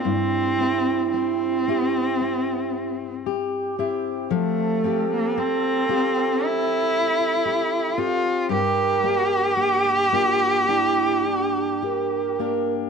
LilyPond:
<<
  \new Staff \with { instrumentName = "Flute" } { \time 4/4 \key g \dorian \tempo 4 = 56 e'2~ e'8. r16 g'4 | a'2.~ a'8. r16 | bes'4 g'8 f'8 e'8 d'8 bes'4 | }
  \new Staff \with { instrumentName = "Steel-string acoustic guitar" } { \time 4/4 \key g \dorian g,8 <c' e' g'>8 c'8 <c' e' g'>8 e'4 g'8 <c' e' g'>8 | f8 <c' f' g'>8 c'8 <c' f' g'>4. g'8 <c' f' g'>8 | g,8 <bes d' g'>8 bes8 <bes d' g'>8 d'4 g'8 <bes d' g'>8 | }
  \new Staff \with { instrumentName = "Cello" } { \time 4/4 \key g \dorian c'4 c'2 r4 | a8. bes16 c'4 e'4. f'8 | g'2.~ g'8 r8 | }
>>